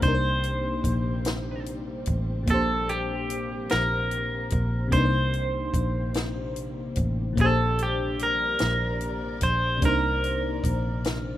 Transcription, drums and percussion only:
0.02 kick, closed hi-hat
0.43 closed hi-hat
0.84 kick, closed hi-hat
1.25 snare, closed hi-hat
1.66 closed hi-hat
2.06 kick, closed hi-hat
2.47 kick, closed hi-hat
2.89 closed hi-hat
3.30 closed hi-hat
3.69 snare, closed hi-hat
4.11 closed hi-hat
4.50 kick, closed hi-hat
4.92 kick, closed hi-hat
5.33 closed hi-hat
5.74 kick, closed hi-hat
6.14 snare, closed hi-hat
6.56 closed hi-hat
6.96 kick, closed hi-hat
7.37 kick, closed hi-hat
7.79 closed hi-hat
8.19 closed hi-hat
8.59 snare, closed hi-hat
9.01 closed hi-hat
9.41 kick, closed hi-hat
9.82 kick, closed hi-hat
10.24 closed hi-hat
10.64 kick, closed hi-hat
11.04 snare, closed hi-hat

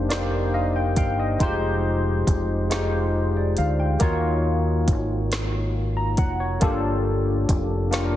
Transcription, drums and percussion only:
0.10 snare, closed hi-hat
0.96 kick, closed hi-hat
1.40 kick, closed hi-hat
2.27 kick, closed hi-hat
2.71 snare, closed hi-hat
3.57 closed hi-hat
4.00 kick, closed hi-hat
4.88 kick, closed hi-hat
5.32 snare, closed hi-hat
6.17 kick, closed hi-hat
6.61 kick, closed hi-hat
7.49 kick, closed hi-hat
7.93 snare, closed hi-hat

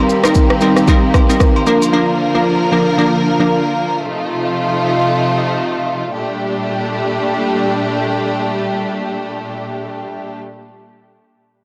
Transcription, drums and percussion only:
0.09 shaker
0.24 cross-stick, high agogo, shaker
0.35 kick, shaker
0.50 cross-stick
0.61 high agogo, shaker
0.76 cross-stick, shaker
0.88 kick, high agogo, shaker
1.14 kick, cross-stick, high agogo, shaker
1.30 shaker
1.40 kick, cross-stick, shaker
1.56 high agogo
1.67 shaker
1.82 high agogo, shaker

